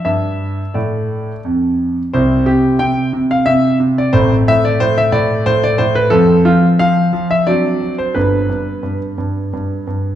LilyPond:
<<
  \new Staff \with { instrumentName = "Grand piano" } { \time 3/4 \key c \major \tempo 4 = 89 << { e''4 d''4 r4 | c''8 g'8 g''8. f''16 e''8. d''16 | c''8 e''16 d''16 c''16 e''16 d''8 c''16 d''16 c''16 b'16 | a'8 f'8 f''8. e''16 d''8. c''16 |
b'2 r4 | } \\ { d'2. | <c' e'>2. | c'2. | c'2 <c' d'>4 |
<b d'>2. | } >> }
  \new Staff \with { instrumentName = "Grand piano" } { \clef bass \time 3/4 \key c \major g,4 a,4 f,4 | <c, c>8 c8 c8 c8 c8 c8 | <a,, a,>8 a,8 a,8 a,8 a,8 a,8 | <f, f>8 f8 f8 f8 fis8 fis8 |
<g,, g,>8 g,8 g,8 g,8 g,8 g,8 | }
>>